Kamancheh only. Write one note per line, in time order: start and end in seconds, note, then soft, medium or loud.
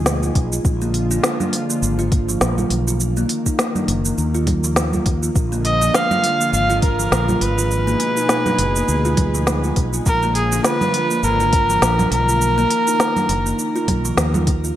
5.65 5.97 D#5 loud
5.95 6.54 F5 loud
6.54 6.81 F5 loud
6.83 7.44 A#4 loud
7.42 9.77 B4 loud
10.06 10.34 A#4 loud
10.36 10.63 G#4 medium
10.65 11.26 B4 loud
11.24 12.12 A#4 loud
12.12 14.14 A#4 loud